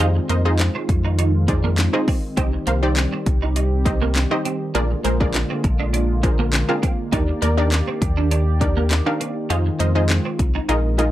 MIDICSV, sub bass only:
0, 0, Header, 1, 2, 480
1, 0, Start_track
1, 0, Time_signature, 4, 2, 24, 8
1, 0, Tempo, 594059
1, 8981, End_track
2, 0, Start_track
2, 0, Title_t, "Sub bass"
2, 0, Program_c, 0, 38
2, 0, Note_on_c, 0, 41, 105
2, 160, Note_off_c, 0, 41, 0
2, 239, Note_on_c, 0, 41, 92
2, 562, Note_off_c, 0, 41, 0
2, 718, Note_on_c, 0, 41, 92
2, 1526, Note_off_c, 0, 41, 0
2, 1918, Note_on_c, 0, 36, 104
2, 2079, Note_off_c, 0, 36, 0
2, 2157, Note_on_c, 0, 36, 88
2, 2480, Note_off_c, 0, 36, 0
2, 2638, Note_on_c, 0, 36, 96
2, 3445, Note_off_c, 0, 36, 0
2, 3838, Note_on_c, 0, 34, 105
2, 3999, Note_off_c, 0, 34, 0
2, 4078, Note_on_c, 0, 34, 88
2, 4401, Note_off_c, 0, 34, 0
2, 4557, Note_on_c, 0, 34, 90
2, 5365, Note_off_c, 0, 34, 0
2, 5758, Note_on_c, 0, 39, 102
2, 5919, Note_off_c, 0, 39, 0
2, 5997, Note_on_c, 0, 39, 91
2, 6320, Note_off_c, 0, 39, 0
2, 6477, Note_on_c, 0, 39, 94
2, 7285, Note_off_c, 0, 39, 0
2, 7678, Note_on_c, 0, 41, 109
2, 7839, Note_off_c, 0, 41, 0
2, 7919, Note_on_c, 0, 41, 93
2, 8241, Note_off_c, 0, 41, 0
2, 8398, Note_on_c, 0, 36, 91
2, 8559, Note_off_c, 0, 36, 0
2, 8637, Note_on_c, 0, 34, 115
2, 8981, Note_off_c, 0, 34, 0
2, 8981, End_track
0, 0, End_of_file